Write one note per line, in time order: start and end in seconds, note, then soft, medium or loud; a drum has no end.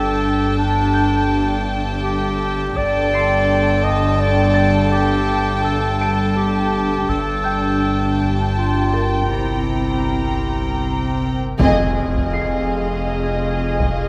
0.00 2.72 G1 medium
0.00 2.72 G1 soft
0.00 2.73 G2 soft
0.00 2.72 D4 soft
0.00 2.74 G4 soft
0.00 0.57 A4 medium
0.00 2.74 A4 soft
0.00 2.73 G5 soft
0.00 2.72 A5 soft
0.58 1.64 D4 medium
0.93 3.08 G6 soft
2.03 2.79 G4 medium
2.76 7.05 G1 medium
2.76 7.05 G2 medium
2.76 7.05 D3 medium
2.76 7.05 G4 soft
2.76 7.05 A4 soft
2.76 3.85 D5 medium
2.76 7.05 G5 medium
2.76 7.06 G5 soft
2.76 7.06 A5 soft
2.76 taiko soft
3.14 5.25 C6 soft
3.14 5.24 C7 soft
3.84 4.22 D#5 medium
3.84 taiko soft
4.21 4.91 D5 medium
4.54 6.68 A6 soft
4.92 5.63 G4 medium
5.64 6.35 A4 medium
6.01 8.15 A5 soft
6.01 8.15 D7 soft
6.36 7.10 G4 medium
7.09 11.56 G1 medium
7.09 9.28 G1 soft
7.09 9.28 G2 soft
7.09 9.29 D4 soft
7.09 11.57 G4 soft
7.09 8.27 A4 medium
7.09 11.36 G5 soft
7.09 11.57 G5 soft
7.09 9.28 A5 soft
7.09 9.29 A5 soft
7.09 taiko soft
7.44 9.66 G5 soft
7.44 9.65 G6 soft
8.19 taiko soft
8.55 9.32 F4 soft
8.93 11.18 A#4 soft
8.93 11.18 A6 soft
9.31 11.36 C2 soft
9.31 11.35 C3 soft
9.31 11.36 C4 soft
9.31 11.22 E4 soft
9.31 11.61 A#4 soft
9.31 11.36 A#5 soft
11.59 14.09 F1 medium
11.59 14.09 F2 medium
11.59 14.09 C4 medium
11.59 14.09 G#4 medium
11.59 14.09 D#5 medium
11.59 14.09 F5 medium
11.59 taiko medium
11.59 impact soft
12.16 taiko medium
12.33 14.09 C7 soft
13.80 taiko medium